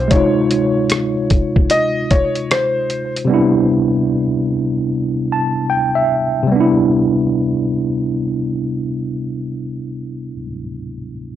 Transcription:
0.00 0.10 E4 medium
0.00 0.12 C5 medium
0.08 3.24 C3 medium
0.08 3.25 G#3 medium
0.08 1.67 C#5 medium
0.08 kick loud
0.08 closed hi-hat medium
0.14 3.28 D#4 medium
0.14 3.30 F4 medium
0.51 closed hi-hat medium
0.90 cross-stick loud
0.90 closed hi-hat medium
1.30 kick medium
1.30 closed hi-hat medium
1.56 kick loud
1.70 2.12 D#5 loud
1.70 closed hi-hat medium
2.11 2.52 C#5 medium
2.11 kick medium
2.11 closed hi-hat medium
2.35 closed hi-hat soft
2.51 3.12 C5 medium
2.51 cross-stick loud
2.51 closed hi-hat medium
2.90 closed hi-hat medium
3.16 closed hi-hat soft
3.25 6.42 C3 medium
3.25 6.45 G3 medium
3.29 6.46 B3 medium
3.29 6.47 D4 medium
3.34 6.48 E4 medium
5.32 5.69 A5 medium
5.70 5.93 G5 medium
5.95 6.47 E5 medium
6.43 10.33 C3 medium
6.47 10.37 G3 medium
6.52 10.41 B3 medium
6.56 10.46 D4 medium
6.60 10.50 E4 medium

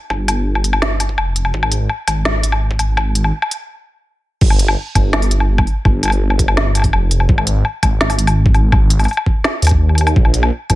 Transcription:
0.10 1.17 G1 loud
0.10 kick loud
0.10 low woodblock medium
0.28 closed hi-hat medium
0.28 low woodblock medium
0.55 low woodblock medium
0.64 closed hi-hat medium
0.73 low woodblock medium
0.82 snare loud
1.00 closed hi-hat medium
1.00 low woodblock medium
1.09 kick medium
1.18 1.52 F1 loud
1.18 low woodblock medium
1.36 closed hi-hat medium
1.45 low woodblock medium
1.54 1.89 G#1 loud
1.54 kick loud
1.63 low woodblock medium
1.72 closed hi-hat medium
1.89 low woodblock medium
2.08 2.78 G#1 loud
2.08 kick medium
2.08 closed hi-hat medium
2.08 low woodblock medium
2.25 snare loud
2.43 closed hi-hat medium
2.52 low woodblock medium
2.71 kick loud
2.79 3.32 G#1 loud
2.79 closed hi-hat medium
2.79 low woodblock medium
2.97 kick loud
2.97 low woodblock medium
3.15 closed hi-hat medium
3.24 low woodblock soft
3.42 low woodblock medium
3.51 closed hi-hat medium
4.41 4.76 G1 loud
4.41 kick loud
4.41 crash loud
4.50 low woodblock medium
4.59 closed hi-hat medium
4.68 low woodblock medium
4.95 5.66 G1 loud
4.95 kick medium
4.95 closed hi-hat medium
4.95 low woodblock medium
5.13 snare loud
5.13 low woodblock medium
5.22 open hi-hat medium
5.31 closed hi-hat medium
5.40 low woodblock medium
5.58 kick loud
5.58 low woodblock medium
5.67 open hi-hat soft
5.85 6.92 G1 loud
5.85 kick loud
5.85 low woodblock medium
6.03 closed hi-hat medium
6.03 low woodblock soft
6.05 low woodblock soft
6.08 low woodblock medium
6.10 open hi-hat soft
6.10 low woodblock medium
6.30 low woodblock medium
6.39 kick medium
6.39 closed hi-hat medium
6.48 low woodblock medium
6.57 snare loud
6.75 closed hi-hat medium
6.75 low woodblock soft
6.77 low woodblock soft
6.80 low woodblock soft
6.82 kick medium
6.82 open hi-hat medium
6.82 low woodblock soft
6.93 7.28 F1 loud
6.93 low woodblock medium
7.11 closed hi-hat medium
7.20 low woodblock medium
7.29 kick loud
7.38 low woodblock medium
7.47 closed hi-hat medium
7.65 low woodblock medium
7.83 8.53 G#1 loud
7.83 kick medium
7.83 closed hi-hat medium
7.83 low woodblock medium
8.01 snare loud
8.10 open hi-hat medium
8.10 low woodblock medium
8.19 closed hi-hat medium
8.27 open hi-hat medium
8.27 low woodblock medium
8.46 kick loud
8.54 9.07 G#1 loud
8.54 open hi-hat soft
8.54 low woodblock medium
8.72 kick loud
8.72 low woodblock medium
8.90 closed hi-hat medium
8.99 open hi-hat soft
8.99 low woodblock soft
9.04 open hi-hat soft
9.04 low woodblock soft
9.08 open hi-hat soft
9.08 low woodblock soft
9.13 open hi-hat soft
9.17 low woodblock medium
9.26 kick medium
9.44 snare loud
9.44 low woodblock medium
9.62 10.15 D#2 loud
9.62 closed hi-hat medium
9.65 closed hi-hat medium
9.67 closed hi-hat medium
9.67 low woodblock medium
9.69 kick medium
9.69 closed hi-hat soft
9.89 low woodblock soft
9.95 closed hi-hat medium
9.95 low woodblock soft
10.01 low woodblock soft
10.07 open hi-hat soft
10.07 low woodblock medium
10.16 10.51 A#1 loud
10.16 kick loud
10.25 low woodblock medium
10.34 closed hi-hat medium
10.43 low woodblock medium
10.70 10.75 A#1 loud
10.70 kick medium
10.70 closed hi-hat medium
10.70 low woodblock medium

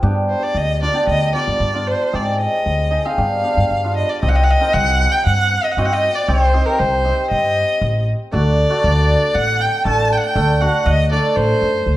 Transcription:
0.03 0.34 G2 loud
0.03 0.42 B3 medium
0.03 0.42 D4 medium
0.03 0.43 G4 medium
0.29 0.44 C5 medium
0.43 0.58 D5 medium
0.55 0.86 D2 medium
0.55 0.82 D#5 loud
0.82 0.88 D4 medium
0.82 0.88 F4 medium
0.82 1.06 D5 medium
0.93 1.14 B3 medium
0.93 1.14 D4 medium
0.93 1.14 G4 medium
1.07 1.31 D2 medium
1.07 1.33 D#5 loud
1.34 1.53 B3 medium
1.34 1.54 D4 medium
1.34 1.54 F4 medium
1.34 1.88 D5 medium
1.48 1.55 G2 medium
1.60 1.92 G2 medium
1.73 1.93 B3 medium
1.73 1.93 D4 medium
1.73 1.93 F4 medium
1.87 2.16 C5 medium
2.13 2.45 G#2 medium
2.13 2.52 C4 medium
2.13 2.52 D#4 medium
2.13 2.52 G#4 medium
2.13 2.40 D5 medium
2.40 3.07 D#5 medium
2.66 2.97 D2 medium
2.91 2.98 D#4 medium
2.91 2.98 G#4 medium
3.05 3.18 C4 medium
3.05 3.18 D#4 medium
3.05 3.18 G#4 medium
3.05 3.96 F5 medium
3.17 3.41 G2 medium
3.17 3.38 B3 medium
3.17 3.39 D4 medium
3.17 3.39 G4 medium
3.44 3.63 B3 medium
3.44 3.63 D4 medium
3.44 3.64 G4 medium
3.57 3.65 G2 medium
3.71 4.02 G2 medium
3.84 4.03 B3 medium
3.84 4.03 D4 medium
3.84 4.03 F4 medium
3.97 4.11 D#5 medium
4.09 4.21 D5 medium
4.21 4.54 C2 loud
4.21 4.41 C4 medium
4.21 4.41 D#4 medium
4.21 4.41 G4 medium
4.21 4.30 D#5 medium
4.29 4.37 F#5 medium
4.35 4.45 D#5 medium
4.43 4.52 F#5 medium
4.50 4.75 D#5 loud
4.61 5.12 C4 medium
4.61 5.12 D#4 medium
4.61 5.12 A#4 medium
4.73 5.05 C2 loud
4.73 5.13 F#5 loud
5.12 5.25 G5 loud
5.26 5.57 G2 medium
5.26 5.66 F#5 loud
5.64 5.73 D#5 medium
5.71 5.80 F#5 medium
5.77 6.08 G2 medium
5.77 6.03 C4 medium
5.77 6.03 D#4 medium
5.77 6.03 F#4 medium
5.77 5.87 D#5 medium
5.85 5.94 F#5 loud
5.92 6.17 D#5 loud
6.15 6.29 D5 medium
6.28 6.59 C2 medium
6.28 6.41 C4 medium
6.28 6.41 D#4 medium
6.28 6.41 G4 medium
6.28 6.67 C5 medium
6.53 6.79 C4 medium
6.53 6.79 D#4 medium
6.53 6.80 G4 medium
6.66 6.80 A#4 medium
6.79 7.10 C2 loud
6.79 7.30 C5 medium
7.05 7.56 C4 medium
7.05 7.56 D#4 medium
7.05 7.56 G4 medium
7.30 7.62 G2 medium
7.30 8.03 D#5 loud
7.82 8.12 A1 medium
8.32 8.64 D2 medium
8.32 8.51 A3 medium
8.32 8.52 D4 medium
8.32 8.52 F#4 medium
8.32 9.36 D5 loud
8.70 9.21 A3 medium
8.70 9.21 D4 medium
8.70 9.21 F#4 medium
8.84 9.14 D2 loud
9.35 9.65 A1 medium
9.35 9.62 F#5 loud
9.61 9.85 G5 loud
9.85 10.16 A1 medium
9.85 10.10 A3 medium
9.85 10.11 D4 medium
9.85 10.11 A4 medium
9.85 10.14 A5 loud
10.12 10.19 G5 loud
10.17 10.25 F#5 medium
10.23 10.62 G5 loud
10.35 10.66 D2 loud
10.35 10.48 A3 medium
10.35 10.48 D4 medium
10.35 10.48 A4 medium
10.61 10.86 A3 medium
10.61 10.86 D4 medium
10.61 10.86 F#4 loud
10.61 10.87 F#5 medium
10.86 11.16 D2 loud
10.86 11.11 D#5 loud
11.11 11.62 A3 medium
11.11 11.62 D4 medium
11.11 11.62 A4 medium
11.11 11.38 D5 medium
11.36 11.52 A1 medium
11.36 11.97 C5 loud
11.62 11.84 F#2 medium
11.86 11.97 D2 medium

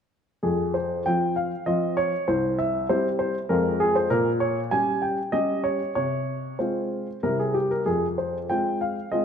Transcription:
0.43 1.04 F2 soft
0.43 0.75 G#4 medium
0.74 1.02 C5 soft
1.06 1.50 F3 soft
1.06 1.50 C4 soft
1.06 1.51 F4 soft
1.06 1.34 G5 medium
1.36 1.64 F5 medium
1.66 2.11 F3 soft
1.66 2.11 C4 soft
1.66 2.12 F4 soft
1.66 1.97 D#5 medium
1.97 2.28 C#5 medium
2.28 2.88 C2 soft
2.28 2.59 C5 medium
2.59 2.86 E5 medium
2.89 3.33 G3 soft
2.89 3.34 C4 soft
2.89 3.34 E4 soft
2.89 3.08 C5 medium
3.19 3.37 C5 medium
3.49 4.09 F2 medium
3.49 4.07 G#3 soft
3.49 4.07 C4 soft
3.49 4.07 F4 soft
3.49 3.80 A#4 medium
3.80 3.95 G#4 medium
3.95 4.11 C5 medium
4.10 4.70 A#2 medium
4.10 4.29 A#4 medium
4.40 4.59 C#5 medium
4.71 5.16 G3 soft
4.71 5.17 C#4 soft
4.71 5.17 G4 soft
4.71 5.03 G#5 medium
5.02 5.33 G5 medium
5.32 5.78 G3 soft
5.32 5.78 C#4 soft
5.32 5.79 G4 soft
5.32 5.64 D#5 medium
5.64 5.93 C#5 medium
5.95 6.58 C3 soft
5.95 6.56 C#5 medium
6.59 7.06 G#3 soft
6.59 7.06 C4 soft
6.59 7.06 F4 soft
6.59 7.20 C5 soft
7.23 7.85 C3 soft
7.23 7.83 G3 soft
7.23 7.83 C4 soft
7.23 7.84 E4 soft
7.23 7.39 A#4 medium
7.39 7.56 G#4 medium
7.54 7.71 G4 medium
7.71 7.87 A#4 medium
7.86 8.48 F2 soft
7.86 8.05 G#4 medium
8.18 8.37 C5 soft
8.50 8.95 G#3 soft
8.50 8.95 C4 soft
8.50 8.95 F4 soft
8.50 8.78 G5 medium
8.81 9.09 F5 soft
9.12 9.25 G#3 soft
9.12 9.25 C4 soft
9.12 9.25 F4 soft
9.12 9.25 D#5 medium

